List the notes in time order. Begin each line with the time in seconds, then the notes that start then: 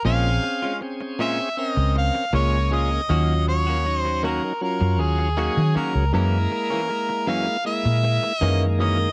0.05 A#1 A#2 G#3 C4 C#4 F4 G#4 F5
0.43 muted clean electric guitar stroke
0.62 G#3 C#4 F4
0.81 C4 C#4 G#4, muted clean electric guitar stroke
1.01 muted clean electric guitar stroke
1.19 A#2 G#3 C#4 F4 E5
1.39 muted clean electric guitar stroke
1.57 C4 C#4 A#4 D#5
1.77 C#2, muted clean electric guitar stroke
1.95 F5, muted clean electric guitar stroke
2.15 muted clean electric guitar stroke
2.33 C#2 A#2 G#3 A#3 C#4 F4 G#4 C#5
2.71 A#2 G#3 C#4 F4 D#5
2.91 muted clean electric guitar stroke
3.09 D#2 D#3 F#3 A#3 C#4 F4 F#4
3.48 C#5, muted clean electric guitar stroke
3.67 A#3 C#4 F#4
3.85 F#3 C#4 D#4, muted clean electric guitar stroke
3.98 C5
4.05 muted clean electric guitar stroke
4.23 D#3 A#3 C#4 F#4 A#4
4.43 muted clean electric guitar stroke
4.61 F#3 C#4 F4 A#4
4.81 F#2, muted clean electric guitar stroke
4.99 D#2 G#4, muted clean electric guitar stroke
5.19 muted clean electric guitar stroke
5.37 D#3 F#3 A#3 C#4 F#4 G#4
5.57 D#3
5.75 D#3 A#3 C#4 F#4 A#4, muted fingered electric bass stroke
5.95 C#2, muted clean electric guitar stroke
6.13 F#2 E3 G#3 A#3 C#4 E4 A#4
6.51 muted clean electric guitar stroke
6.70 E3 A#3 C#4
6.89 G#3 A#3 E4, muted clean electric guitar stroke
7.09 muted clean electric guitar stroke
7.27 F#2 E3 A#3 C#4 F5
7.47 muted clean electric guitar stroke
7.65 G#3 A#3 E4 E5
7.85 A#2, muted clean electric guitar stroke
8.03 muted clean electric guitar stroke
8.23 muted clean electric guitar stroke
8.39 F#2 D#3 E3 G#3 A#3 C#4 D#5
8.79 F#2 E3 A#3 C#4 D#5
8.99 muted clean electric guitar stroke